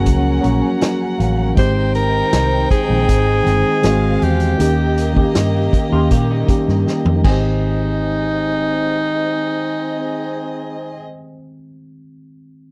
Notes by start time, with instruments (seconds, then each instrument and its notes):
Already playing: tine electric piano F3 F#3 A#3 C#4 F#4 G#4, violin section C#4 A#4 F#5
0.06 fingered electric bass C#2, kick, closed hi-hat
0.41 fingered electric bass A#1, tine electric piano F#3 A#3 C#4 A#5, closed hi-hat
0.45 tine electric piano F#4
0.62 tine electric piano G#5
0.81 tine electric piano F#5, snare, closed hi-hat
1.19 fingered electric bass A1, tine electric piano F5, closed hi-hat
1.55 fingered electric bass G#1, tine electric piano D#3 G#3 C4, violin section D#4 C5 G5, alto saxophone C5, kick, closed hi-hat
1.59 tine electric piano G4
1.95 alto saxophone A#4, closed hi-hat
2.33 fingered electric bass C2, snare, closed hi-hat
2.71 alto saxophone G#4, kick, closed hi-hat
2.87 fingered electric bass A#1, tine electric piano D#3 G#3 C4 G5
3.09 fingered electric bass G#1, kick, closed hi-hat
3.43 fingered electric bass G1, tine electric piano D#3 G#3 C4, closed hi-hat
3.48 tine electric piano G5
3.82 fingered electric bass G#1, tine electric piano D#3 G#3 C4, violin section G#3 C4 F5, snare, closed hi-hat
3.86 tine electric piano F#4
4.22 fingered electric bass E2, alto saxophone G4, closed hi-hat
4.40 closed hi-hat
4.57 fingered electric bass D#2, tine electric piano D#3 A#3 C#4 G4, violin section A#3 G4 D#5, closed hi-hat
4.97 closed hi-hat
5.13 tine electric piano D#3 A#3 C#4, kick
5.17 tine electric piano G4
5.35 fingered electric bass G2, snare, closed hi-hat
5.73 kick, closed hi-hat
5.90 fingered electric bass D#2, tine electric piano D#3 A#3 C#4 G4, clean electric guitar F4
6.11 fingered electric bass A#2, clean electric guitar A#3 G4, kick, closed hi-hat
6.31 clean electric guitar G3 D#4
6.46 tine electric piano D#3 A#3 C#4, muted fingered electric bass stroke, kick, closed hi-hat
6.50 tine electric piano G4
6.68 fingered electric bass G2, snare
6.87 snare
7.05 fingered electric bass F2, high tom
7.16 tine electric piano D#3
7.21 fingered electric bass G#1, tine electric piano G#3, kick, crash
7.25 violin section C4 G#4 D#5, tine electric piano C4, alto saxophone D#4
7.32 tine electric piano G4